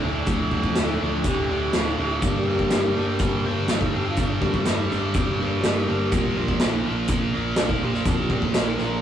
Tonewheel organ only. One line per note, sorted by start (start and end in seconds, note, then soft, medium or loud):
0.00 0.26 D4 medium
0.27 0.97 F3 medium
0.27 0.97 A3 soft
0.27 0.97 D4 medium
1.03 1.24 F3 soft
1.03 1.25 A3 soft
1.03 1.25 D4 medium
1.28 1.74 G4 loud
1.76 1.99 F4 medium
2.01 2.12 G4 medium
2.11 2.13 E4 medium
2.16 2.37 F4 loud
2.23 2.92 G3 medium
2.23 2.70 A#3 medium
2.23 2.93 D4 medium
2.39 2.70 G4 medium
2.71 3.65 A#3 medium
2.71 3.66 G4 loud
3.96 4.06 G4 medium
4.10 4.32 F4 medium
4.30 4.40 D4 medium
4.41 4.74 G3 medium
4.41 4.74 A#3 soft
4.41 4.74 D4 medium
4.79 5.36 G3 medium
5.37 5.60 G3 soft
5.37 5.61 A#3 soft
5.37 5.61 D4 medium
5.63 6.56 G3 medium
5.63 6.33 A#3 loud
6.34 6.67 F3 medium
6.34 6.68 A#3 medium
6.34 6.68 D4 medium
7.58 7.69 D4 loud
7.71 7.82 F4 medium
7.83 7.94 G4 medium
7.96 8.19 A4 medium
8.06 8.38 F3 medium
8.06 8.39 A#3 soft
8.06 8.39 D4 medium
8.19 8.42 G4 medium
8.43 8.54 A4 loud
8.55 9.02 A#4 loud
8.77 9.00 F3 medium
8.77 9.00 A#3 soft
8.77 9.01 D4 medium